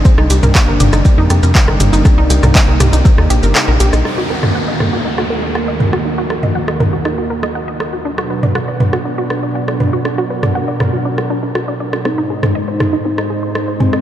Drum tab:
HH |--x---x---x---x-|--x---xx--x---x-|----------------|----------------|
SH |x-xxx-xxx-xxx-xx|x-xxx-xxx-xxx-xx|----------------|----------------|
CP |----x-------x---|----x-------x---|----------------|----------------|
SD |-r--r--r--r--r--|r--r--r--r--r--r|r--r--r--r--r--r|--r--r--r--r--r-|
T2 |---o--o-------o-|---o--o---------|---o--o-------o-|---o--o---------|
BD |o---o---o---o---|o---o---o-------|----------------|----------------|

HH |----------------|----------------|----------------|
SH |----------------|----------------|----------------|
CP |----------------|----------------|----------------|
SD |-r--r--r--r--r--|r--r--r--r--r--r|r--r--r--r--r--r|
T2 |---o--o-------o-|---o--o---------|---o--o-------o-|
BD |----------------|----------------|----------------|